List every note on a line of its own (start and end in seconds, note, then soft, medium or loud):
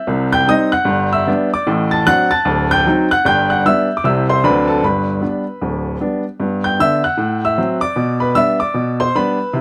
0.07 0.41 C2 medium
0.07 0.42 C3 medium
0.33 0.48 G5 medium
0.33 0.48 G6 loud
0.48 0.70 G3 soft
0.48 0.70 C4 soft
0.48 0.70 D#4 medium
0.48 0.72 D#5 medium
0.48 0.72 D#6 loud
0.72 1.09 F#5 medium
0.72 1.12 F#6 medium
0.85 1.20 G1 medium
0.85 1.20 G2 medium
1.13 1.49 E5 medium
1.13 1.52 E6 medium
1.27 1.49 G3 medium
1.27 1.49 B3 medium
1.27 1.49 D4 medium
1.54 1.68 D5 medium
1.54 1.68 D6 medium
1.67 2.00 A1 medium
1.67 2.00 A2 medium
1.91 2.06 A5 medium
1.91 2.06 A6 medium
2.06 2.28 F#3 medium
2.06 2.28 C4 soft
2.06 2.28 D4 medium
2.06 2.29 F#5 medium
2.06 2.30 F#6 loud
2.31 2.68 A5 medium
2.31 2.70 A6 medium
2.45 2.79 D1 medium
2.45 2.79 D2 medium
2.71 3.08 G5 medium
2.71 3.10 G6 loud
2.87 3.08 F#3 medium
2.87 3.08 C4 soft
2.87 3.08 D#4 medium
3.11 3.25 F#5 medium
3.11 3.26 F#6 loud
3.25 3.58 G1 medium
3.25 3.58 G2 medium
3.25 3.48 G5 medium
3.25 3.49 G6 loud
3.50 3.64 F#5 medium
3.50 3.65 F#6 medium
3.65 3.86 G3 medium
3.65 3.87 B3 medium
3.65 3.87 D4 medium
3.65 3.95 E5 medium
3.65 3.96 E6 medium
3.97 4.04 D6 medium
4.04 4.37 C2 medium
4.04 4.37 C3 medium
4.04 4.25 G3 soft
4.04 4.26 C4 soft
4.04 4.26 E4 soft
4.04 4.27 E5 medium
4.04 4.28 E6 medium
4.29 4.43 C5 medium
4.29 4.44 C6 medium
4.44 4.77 D2 medium
4.44 4.77 D3 medium
4.44 4.65 F#3 soft
4.44 4.65 C4 soft
4.44 4.66 D4 soft
4.44 4.66 B4 medium
4.44 4.67 B5 medium
4.68 4.82 A4 medium
4.68 4.83 A5 medium
4.83 5.16 G1 medium
4.83 5.16 G2 medium
4.83 5.98 B4 medium
4.83 6.01 B5 medium
5.21 5.43 G3 soft
5.21 5.43 B3 soft
5.21 5.44 D4 soft
5.62 5.95 D1 medium
5.62 5.95 D2 medium
6.01 6.22 G3 soft
6.01 6.22 B3 soft
6.01 6.23 D4 soft
6.40 6.73 G2 medium
6.40 6.63 B3 soft
6.64 6.79 G5 medium
6.64 6.79 G6 medium
6.79 7.01 D3 soft
6.79 7.01 B3 soft
6.79 7.02 D4 soft
6.79 7.02 E5 medium
6.79 7.03 E6 loud
7.04 7.41 F#5 medium
7.04 7.43 F#6 medium
7.17 7.51 A2 medium
7.45 7.80 E5 medium
7.45 7.83 E6 medium
7.58 7.79 F#3 soft
7.58 7.79 C4 medium
7.81 8.18 D5 medium
7.81 8.21 D6 medium
7.96 8.30 B2 medium
8.20 8.36 B4 medium
8.20 8.36 B5 medium
8.35 8.57 G3 soft
8.35 8.57 B3 soft
8.35 8.57 D4 medium
8.35 8.59 E5 medium
8.35 8.60 E6 loud
8.60 8.97 D5 medium
8.60 8.99 D6 medium
8.74 9.08 B2 medium
9.00 9.14 C5 medium
9.00 9.15 C6 medium
9.15 9.37 G3 soft
9.15 9.37 B3 medium
9.15 9.37 D4 medium
9.15 9.53 B4 medium
9.15 9.55 B5 medium
9.53 9.61 C3 medium
9.53 9.61 E4 soft